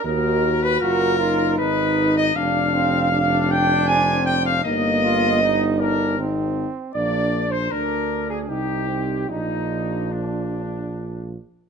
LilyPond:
<<
  \new Staff \with { instrumentName = "Flugelhorn" } { \time 3/4 \key ees \minor \tempo 4 = 78 bes'8. ces''16 bes'4 ces''8. ees''16 | \key bes \mixolydian f''4. g''8 aes''8 g''16 f''16 | ees''4. bes'8 r4 | d''8. c''16 bes'8. aes'16 g'4 |
ees'4 d'4. r8 | }
  \new Staff \with { instrumentName = "Trumpet" } { \time 3/4 \key ees \minor bes'8. ces''16 bes'4 ces''8. ees''16 | \key bes \mixolydian f''4. g''8 aes''8 g''16 f''16 | ees''4. bes'8 r4 | d''8. c''16 bes'8. aes'16 g'4 |
ees'4 d'4. r8 | }
  \new Staff \with { instrumentName = "French horn" } { \time 3/4 \key ees \minor ges'4 f'8 ees'4. | \key bes \mixolydian d'4 d'4 c'4 | bes4 ees'4 ees'8 r8 | d'4 d'4 ees'4 |
f'2~ f'8 r8 | }
  \new Staff \with { instrumentName = "Trombone" } { \time 3/4 \key ees \minor ees'8 r8 ges'8 f'8 ees'4 | \key bes \mixolydian d'8 c'8 d'2 | ees'8 f'8 ees'8 d'8 c'4 | bes8 r8 d'4 ees'8 c'8 |
d'2~ d'8 r8 | }
  \new Staff \with { instrumentName = "Tuba" } { \clef bass \time 3/4 \key ees \minor ees,4 ges,,4 aes,,4 | \key bes \mixolydian f,,2. | g,,2 aes,,8 r8 | bes,,4 d,4 c,4 |
bes,,2~ bes,,8 r8 | }
>>